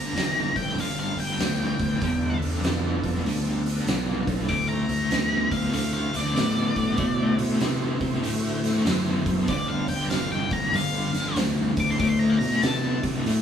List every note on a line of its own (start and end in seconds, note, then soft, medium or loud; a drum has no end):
0.00 0.13 G1 medium
0.00 0.14 G2 medium
0.00 0.14 D3 medium
0.00 1.99 A3 medium
0.00 1.99 B3 medium
0.00 1.99 D4 medium
0.00 1.99 F4 medium
0.00 0.55 A#5 medium
0.15 0.50 G1 medium
0.15 0.51 G2 medium
0.15 0.52 E3 loud
0.15 snare loud
0.15 open hi-hat medium
0.56 0.75 G1 medium
0.56 0.76 G2 medium
0.56 0.76 E3 medium
0.56 0.77 G5 medium
0.56 kick medium
0.56 open hi-hat medium
0.77 1.13 G1 medium
0.77 1.14 G2 medium
0.77 1.14 D3 medium
0.77 0.98 F5 loud
0.77 open hi-hat medium
1.00 1.19 F5 loud
1.17 1.36 G1 loud
1.17 1.37 G2 medium
1.17 1.37 D3 medium
1.17 2.39 G5 medium
1.17 open hi-hat soft
1.38 1.74 D2 medium
1.38 1.76 G2 medium
1.38 1.76 E3 medium
1.38 snare loud
1.38 open hi-hat medium
1.79 1.99 D2 loud
1.79 2.00 G2 medium
1.79 2.00 E3 medium
1.79 kick medium
1.79 open hi-hat medium
2.01 2.37 E2 loud
2.01 2.38 G2 medium
2.01 2.38 D3 medium
2.01 4.47 B3 medium
2.01 4.47 D4 medium
2.01 4.47 F4 medium
2.01 4.47 A4 medium
2.01 kick loud
2.01 open hi-hat medium
2.40 2.60 E2 medium
2.40 2.62 G2 medium
2.40 2.62 D3 medium
2.40 open hi-hat soft
2.62 2.98 F2 medium
2.62 3.00 G2 medium
2.62 3.00 E3 medium
2.62 snare loud
2.62 open hi-hat medium
3.03 3.23 F2 medium
3.03 3.24 G2 medium
3.03 3.24 E3 medium
3.03 kick medium
3.03 open hi-hat medium
3.24 3.79 D2 medium
3.24 3.62 G2 medium
3.24 3.62 D3 medium
3.24 open hi-hat medium
3.66 3.86 G2 medium
3.66 3.86 D3 medium
3.66 open hi-hat soft
3.87 4.23 B1 medium
3.87 4.24 G2 medium
3.87 4.24 E3 medium
3.87 snare loud
3.87 open hi-hat medium
4.27 4.47 B1 medium
4.27 4.47 G2 medium
4.27 4.47 E3 medium
4.27 kick medium
4.27 open hi-hat medium
4.49 4.84 D2 medium
4.49 4.85 D3 medium
4.49 6.96 A3 medium
4.49 4.86 A3 medium
4.49 6.96 C4 medium
4.49 6.96 E4 medium
4.49 6.96 F#4 medium
4.49 4.68 D6 loud
4.49 kick loud
4.49 open hi-hat medium
4.69 5.50 A#5 loud
4.89 5.09 D2 medium
4.89 5.09 D3 medium
4.89 5.09 A3 medium
4.89 open hi-hat medium
5.11 5.47 D2 medium
5.11 5.47 D3 medium
5.11 5.48 B3 medium
5.11 snare loud
5.11 open hi-hat medium
5.51 5.71 D2 medium
5.51 5.71 D3 medium
5.51 5.72 B3 medium
5.51 5.72 F5 medium
5.51 kick medium
5.51 open hi-hat medium
5.73 6.09 D2 medium
5.73 6.10 D3 medium
5.73 6.10 A3 medium
5.73 5.93 F5 medium
5.73 open hi-hat medium
5.94 6.14 F5 loud
6.13 6.34 D2 medium
6.13 6.33 D3 medium
6.13 6.34 A3 medium
6.13 7.37 D5 medium
6.13 snare soft
6.13 open hi-hat medium
6.36 6.71 A2 medium
6.36 6.72 D3 medium
6.36 6.72 B3 medium
6.36 snare loud
6.36 open hi-hat medium
6.76 6.95 A2 medium
6.76 6.96 D3 medium
6.76 6.96 B3 medium
6.76 kick medium
6.76 open hi-hat medium
6.97 7.34 B2 loud
6.97 7.35 D3 medium
6.97 9.46 A3 medium
6.97 7.35 A3 medium
6.97 9.46 E4 medium
6.97 9.46 F#4 medium
6.97 9.46 C5 medium
6.97 kick loud
6.97 open hi-hat medium
7.38 7.58 B2 medium
7.38 7.58 D3 medium
7.38 7.59 A3 medium
7.38 open hi-hat medium
7.60 7.97 C3 medium
7.60 7.97 D3 medium
7.60 7.97 B3 medium
7.60 snare medium
7.60 open hi-hat medium
8.01 8.20 C3 medium
8.01 8.21 D3 medium
8.01 8.21 B3 medium
8.01 kick medium
8.01 open hi-hat medium
8.23 8.78 A2 medium
8.23 8.59 D3 medium
8.23 8.60 A3 medium
8.23 open hi-hat medium
8.64 8.84 D3 medium
8.64 8.84 A3 medium
8.64 snare soft
8.64 open hi-hat medium
8.85 9.21 F#2 medium
8.85 9.22 D3 medium
8.85 9.22 B3 medium
8.85 snare loud
8.85 open hi-hat medium
9.26 9.46 F#2 loud
9.26 9.47 D3 medium
9.26 9.47 B3 medium
9.26 kick medium
9.26 open hi-hat medium
9.48 9.84 G1 loud
9.48 9.85 G2 medium
9.48 9.86 D3 medium
9.48 11.97 A3 medium
9.48 11.98 B3 medium
9.48 11.97 D4 medium
9.48 11.98 F4 medium
9.48 9.69 D5 loud
9.48 kick loud
9.48 open hi-hat medium
9.68 9.88 F5 medium
9.88 10.08 G1 medium
9.88 10.09 G2 medium
9.88 10.09 D3 medium
9.88 10.10 G5 medium
9.88 open hi-hat medium
10.10 10.47 G1 loud
10.10 10.48 G2 medium
10.10 10.48 E3 loud
10.10 10.31 F5 medium
10.10 snare loud
10.10 open hi-hat medium
10.32 10.52 G5 medium
10.51 10.71 G1 loud
10.51 10.72 G2 medium
10.51 10.72 E3 medium
10.51 10.73 A#5 medium
10.51 kick medium
10.51 open hi-hat medium
10.72 11.09 G1 medium
10.72 11.10 G2 medium
10.72 11.10 D3 medium
10.72 11.36 F5 loud
10.72 open hi-hat medium
11.14 11.34 G1 medium
11.14 11.34 G2 medium
11.14 11.35 D3 medium
11.14 snare soft
11.14 open hi-hat medium
11.36 11.72 D2 medium
11.36 11.73 G2 medium
11.36 11.73 E3 medium
11.36 snare loud
11.36 open hi-hat medium
11.77 11.97 D2 loud
11.77 11.98 G2 medium
11.77 11.98 E3 medium
11.77 11.91 D6 medium
11.77 kick medium
11.77 open hi-hat medium
11.91 11.99 C6 medium
11.99 12.35 D2 loud
11.99 12.36 D3 medium
11.99 13.42 A3 medium
11.99 12.36 A3 medium
11.99 13.42 D4 medium
11.99 13.42 E4 medium
11.99 13.42 F#4 medium
11.99 12.09 D6 loud
11.99 kick loud
11.99 open hi-hat medium
12.09 12.19 C6 medium
12.19 12.37 A#5 loud
12.30 12.36 F5 medium
12.39 12.60 B2 medium
12.39 12.61 D3 medium
12.39 12.61 A3 medium
12.39 12.60 A#5 medium
12.39 open hi-hat soft
12.62 12.98 C3 medium
12.62 12.99 D3 medium
12.62 12.99 B3 medium
12.62 13.02 A5 loud
12.62 snare medium
12.62 open hi-hat medium
13.03 13.23 C3 medium
13.03 13.23 D3 medium
13.03 13.24 B3 medium
13.03 kick medium
13.03 open hi-hat medium
13.26 13.42 A2 medium
13.26 13.42 D3 medium
13.26 13.42 A3 medium
13.26 open hi-hat medium